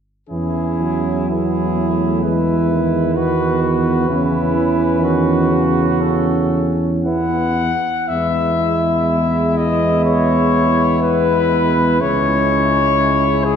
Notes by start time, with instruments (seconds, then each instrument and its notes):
0.29 tuba E2, trombone E3, trombone section C#4, flugelhorn E4, cornet G#4
0.81 trombone F#3
1.29 trombone section B3, flugelhorn E4, cornet G#4
1.77 trombone section A3
2.22 trombone E3, trombone section G#3, flugelhorn E4, cornet B4
2.70 trombone D#3
3.14 trombone section B3, flugelhorn F#4, cornet B4
3.63 cornet B4
4.08 tuba E2, trombone C#3, trombone section C#4, flugelhorn E4
4.54 trombone E3
5.01 trombone D#3, flugelhorn F#4
5.52 trombone C#3
6.01 trombone section C#4, cornet A4
7.03 trombone E3, trombone section B3, flugelhorn E4, cornet F#5
8.08 tuba E2, trombone G#3, trombone section B3, flugelhorn E4, cornet E5
9.57 cornet D#5
10.05 cornet C#5
11.03 cornet B4
12.01 tuba C#2, trombone G#3, trombone section C#4, flugelhorn E4, cornet C#5
13.45 cornet G#4